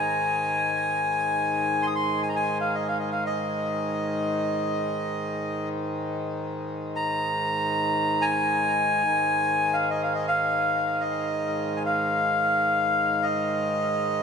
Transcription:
0.00 9.03 G#2 medium
0.00 9.02 D#3 medium
0.00 1.86 G#5 medium
1.82 1.88 C6 medium
1.87 1.94 D#6 medium
1.95 2.22 C6 medium
2.23 2.29 G#5 medium
2.29 2.35 A#5 medium
2.36 2.58 G#5 medium
2.61 2.75 F5 medium
2.75 2.88 D#5 medium
2.88 2.98 F5 medium
2.99 3.10 D#5 medium
3.12 3.24 F5 medium
3.26 5.69 D#5 medium
6.96 8.25 A#5 medium
8.22 9.77 G#5 loud
9.03 14.23 G#2 medium
9.03 14.23 D#3 medium
9.73 9.89 F5 medium
9.90 10.02 D#5 medium
10.03 10.13 F5 medium
10.15 10.26 D#5 medium
10.28 11.03 F5 medium
11.01 11.79 D#5 medium
11.76 11.83 G#5 medium
11.86 13.25 F5 medium
13.23 14.23 D#5 medium

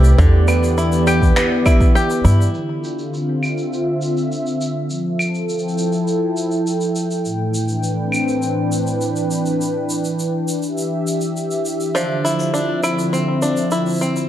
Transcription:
0.00 0.12 C2 loud
0.00 0.17 D3 medium
0.00 0.19 A3 medium
0.00 0.24 C4 medium
0.00 0.78 E4 medium
0.00 0.99 G4 medium
0.00 3.46 G4 medium
0.00 1.13 B4 medium
0.00 0.19 C5 medium
0.00 3.48 D5 medium
0.04 shaker soft
0.18 1.30 E2 loud
0.18 2.54 D3 medium
0.18 2.54 E3 medium
0.18 kick loud
0.18 shaker medium
0.29 2.54 B3 medium
0.48 1.35 B3 medium
0.48 claves medium
0.48 shaker medium
0.64 shaker medium
0.78 1.66 E4 medium
0.78 shaker medium
0.92 shaker soft
1.07 1.94 G4 medium
1.07 claves medium
1.07 shaker medium
1.22 kick medium
1.22 shaker soft
1.36 2.60 B3 medium
1.36 finger snap medium
1.36 shaker medium
1.66 2.25 E4 medium
1.66 kick loud
1.66 claves medium
1.66 shaker medium
1.80 kick medium
1.80 shaker soft
1.95 2.60 G4 medium
1.95 shaker medium
2.10 shaker soft
2.25 2.46 G2 medium
2.25 3.10 E4 medium
2.25 shaker medium
2.41 shaker soft
2.54 4.89 D3 medium
2.54 shaker soft
2.72 4.90 F4 medium
2.84 shaker medium
2.99 5.84 C4 medium
2.99 shaker soft
3.14 shaker soft
3.37 5.83 E5 medium
3.43 claves soft
3.43 shaker medium
3.58 shaker soft
3.73 shaker soft
4.02 shaker medium
4.17 shaker soft
4.32 shaker soft
4.46 shaker soft
4.61 shaker medium
4.88 7.24 F3 medium
4.88 shaker medium
5.07 8.18 A4 medium
5.19 claves soft
5.19 shaker medium
5.35 shaker soft
5.48 10.54 G5 medium
5.48 shaker medium
5.59 8.18 E4 medium
5.59 shaker soft
5.68 shaker soft
5.78 shaker medium
5.92 shaker soft
6.08 shaker medium
6.37 shaker medium
6.51 shaker soft
6.67 shaker medium
6.81 shaker soft
6.96 shaker medium
7.11 shaker soft
7.25 9.60 A2 medium
7.25 shaker medium
7.38 11.95 E3 medium
7.54 shaker medium
7.61 12.90 D4 medium
7.68 shaker soft
7.74 10.54 B4 medium
7.84 shaker medium
7.99 9.61 C4 medium
8.12 claves soft
8.12 shaker medium
8.16 claves soft
8.20 claves soft
8.24 claves soft
8.28 claves soft
8.28 shaker soft
8.31 claves soft
8.38 claves soft
8.42 shaker soft
8.72 shaker medium
8.87 shaker soft
9.01 shaker soft
9.16 shaker soft
9.31 shaker medium
9.46 shaker soft
9.61 shaker medium
9.90 shaker medium
10.04 shaker medium
10.19 shaker soft
10.48 shaker medium
10.62 12.89 G4 medium
10.62 14.29 E5 medium
10.62 shaker soft
10.78 shaker medium
11.07 shaker medium
11.21 shaker soft
11.37 shaker soft
11.51 shaker soft
11.65 shaker medium
11.80 shaker soft
11.95 14.29 D3 medium
11.95 14.29 F3 medium
11.95 12.52 D4 medium
11.95 shaker soft
12.22 14.29 F3 medium
12.22 12.84 E4 soft
12.22 shaker medium
12.40 shaker soft
12.54 12.83 D4 medium
12.54 shaker medium
12.58 14.29 C4 medium
12.84 13.71 E4 medium
12.84 claves soft
12.84 shaker medium
12.99 shaker soft
13.13 14.01 C4 medium
13.13 shaker medium
13.42 14.29 D4 medium
13.42 shaker medium
13.57 shaker soft
13.71 14.29 E4 soft
13.71 shaker medium
13.86 shaker soft
13.89 shaker soft
13.91 shaker soft
13.94 shaker soft
13.96 shaker soft
13.98 14.29 C4 medium
13.98 shaker soft
14.02 shaker medium
14.16 shaker soft

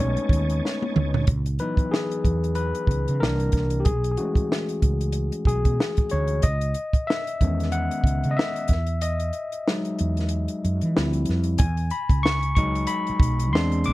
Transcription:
0.00 0.16 B1 loud
0.00 1.24 G#3 soft
0.00 1.24 A3 soft
0.00 1.25 B3 medium
0.00 1.24 C#4 medium
0.00 1.24 D#4 soft
0.00 0.91 C#5 medium
0.00 1.26 C#5 medium
0.00 1.26 D#5 medium
0.00 1.26 G#5 medium
0.00 1.26 A5 medium
0.17 muted fretless electric bass stroke medium
0.17 closed hi-hat soft
0.29 0.60 D#2 medium
0.29 kick medium
0.29 closed hi-hat medium
0.50 closed hi-hat soft
0.65 snare medium
0.82 high tom medium
0.96 1.25 D2 medium
0.96 mid tom medium
1.14 floor tom medium
1.27 1.58 C#2 loud
1.27 kick loud
1.27 closed hi-hat medium
1.46 closed hi-hat soft
1.59 2.53 E3 soft
1.59 2.53 F#3 soft
1.59 2.53 B3 soft
1.59 2.53 D#4 soft
1.59 1.74 B4 medium
1.59 closed hi-hat medium
1.77 kick medium
1.77 closed hi-hat soft
1.91 2.58 G#4 medium
1.91 snare loud
2.11 closed hi-hat soft
2.25 2.72 E2 medium
2.25 kick medium
2.25 closed hi-hat medium
2.44 closed hi-hat soft
2.55 3.22 B4 medium
2.55 closed hi-hat medium
2.75 closed hi-hat soft
2.87 3.06 C#2 medium
2.87 kick medium
2.87 closed hi-hat soft
3.08 3.24 C#3 medium
3.08 closed hi-hat soft
3.20 3.51 C2 medium
3.20 3.83 E3 soft
3.20 3.83 A#3 soft
3.20 3.83 D4 medium
3.20 3.81 A#4 medium
3.20 snare loud
3.40 closed hi-hat soft
3.52 3.83 C2 medium
3.52 kick medium
3.52 snare soft
3.52 closed hi-hat medium
3.70 closed hi-hat soft
3.80 3.86 G4 medium
3.85 4.16 B1 loud
3.85 4.10 G#4 medium
3.85 kick loud
3.85 closed hi-hat medium
4.04 closed hi-hat medium
4.11 4.18 G#4 medium
4.17 5.11 E3 medium
4.17 5.11 G#3 soft
4.17 5.11 A3 soft
4.17 5.12 C#4 soft
4.17 4.78 F#4 medium
4.17 closed hi-hat medium
4.35 kick medium
4.35 closed hi-hat soft
4.52 snare medium
4.69 closed hi-hat soft
4.82 5.30 C#2 medium
4.82 kick medium
4.82 closed hi-hat medium
5.01 closed hi-hat soft
5.12 closed hi-hat medium
5.32 closed hi-hat soft
5.45 5.63 B1 medium
5.45 6.13 G#4 medium
5.45 kick medium
5.45 closed hi-hat soft
5.65 5.78 B2 medium
5.65 kick medium
5.65 closed hi-hat soft
5.80 snare loud
5.97 kick medium
5.97 closed hi-hat soft
6.09 6.42 D2 medium
6.09 6.45 C#5 medium
6.09 closed hi-hat medium
6.28 closed hi-hat soft
6.42 6.74 C#2 loud
6.42 7.04 D#5 medium
6.42 kick loud
6.42 closed hi-hat medium
6.61 closed hi-hat soft
6.74 closed hi-hat medium
6.93 kick medium
6.93 closed hi-hat soft
7.07 7.74 E5 loud
7.07 snare loud
7.27 closed hi-hat soft
7.41 7.88 E2 medium
7.41 8.66 D#3 soft
7.41 8.66 G#3 soft
7.41 8.66 B3 medium
7.41 8.66 C#4 medium
7.41 kick medium
7.41 closed hi-hat medium
7.60 snare soft
7.60 closed hi-hat soft
7.72 8.33 F#5 medium
7.72 closed hi-hat medium
7.91 closed hi-hat soft
8.04 8.22 C#2 medium
8.04 kick medium
8.04 closed hi-hat soft
8.24 8.37 C#3 medium
8.24 closed hi-hat soft
8.31 8.37 D#5 medium
8.37 9.03 E5 medium
8.37 snare loud
8.56 closed hi-hat soft
8.68 9.30 E2 medium
8.68 kick medium
8.68 snare soft
8.68 closed hi-hat medium
8.87 closed hi-hat soft
9.01 10.91 D#5 medium
9.01 closed hi-hat medium
9.20 closed hi-hat soft
9.33 closed hi-hat soft
9.52 closed hi-hat soft
9.68 10.12 F#3 medium
9.68 10.12 G#3 medium
9.68 10.12 D#4 medium
9.68 snare loud
9.85 closed hi-hat soft
9.99 10.46 E2 medium
9.99 closed hi-hat medium
10.17 snare soft
10.17 closed hi-hat soft
10.29 closed hi-hat medium
10.48 closed hi-hat medium
10.65 10.81 F#2 medium
10.65 closed hi-hat medium
10.81 10.95 E3 medium
10.81 closed hi-hat soft
10.96 11.26 D2 medium
10.96 11.57 F3 medium
10.96 11.57 G3 soft
10.96 11.57 C4 soft
10.96 11.57 E4 medium
10.96 snare loud
11.13 closed hi-hat soft
11.25 11.58 F2 medium
11.25 snare soft
11.25 closed hi-hat medium
11.44 closed hi-hat soft
11.58 11.90 E2 loud
11.58 11.92 G#5 medium
11.58 kick loud
11.58 closed hi-hat loud
11.77 closed hi-hat soft
11.90 12.25 B5 medium
11.90 closed hi-hat medium
12.09 12.85 C#2 medium
12.09 kick medium
12.09 closed hi-hat soft
12.23 12.54 C#6 loud
12.23 snare loud
12.43 closed hi-hat soft
12.55 13.49 F#3 medium
12.55 13.50 G#3 soft
12.55 13.50 D#4 medium
12.55 12.70 C#6 medium
12.55 kick medium
12.55 closed hi-hat medium
12.75 closed hi-hat soft
12.87 13.54 B5 medium
12.87 closed hi-hat medium
13.07 muted fretless electric bass stroke medium
13.07 closed hi-hat soft
13.20 13.55 B1 medium
13.20 kick loud
13.20 closed hi-hat medium
13.40 closed hi-hat soft
13.53 13.84 E2 loud
13.53 13.93 G#3 medium
13.53 13.93 C4 medium
13.53 13.93 D4 medium
13.53 13.86 C6 medium
13.53 snare loud
13.72 closed hi-hat soft
13.84 13.93 A#1 loud
13.84 13.93 D6 loud
13.84 closed hi-hat medium

